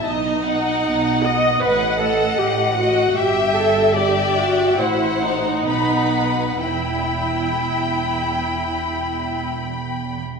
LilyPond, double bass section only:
\new Staff \with { instrumentName = "Double bass section" } { \clef bass \time 4/4 \key e \minor \tempo 4 = 72 b,,4 b,,4 a,,4 a,,4 | g,,2 a,,4 b,,4 | e,,2.~ e,,8. r16 | }